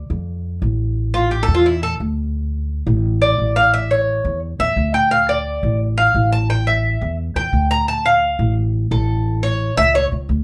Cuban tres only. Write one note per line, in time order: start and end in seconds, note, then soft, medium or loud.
1.14 1.31 F4 medium
1.31 1.42 G4 medium
1.43 1.54 A4 loud
1.54 1.66 F4 medium
1.66 1.83 E4 medium
1.83 1.93 A4 loud
3.22 3.54 D5 medium
3.56 3.73 F5 loud
3.74 3.90 E5 medium
3.91 4.39 C#5 medium
4.60 4.92 E5 loud
4.94 5.11 G5 medium
5.11 5.28 F5 medium
5.29 5.77 D5 medium
5.98 6.30 F5 loud
6.32 6.49 A5 medium
6.50 6.67 G5 medium
6.67 7.15 E5 medium
7.36 7.68 G5 medium
7.71 7.87 A#5 loud
7.88 8.05 A5 medium
8.06 8.54 F5 medium
8.91 9.40 A4 medium
9.43 9.75 C#5 medium
9.77 9.94 E5 loud
9.95 10.05 C#5 loud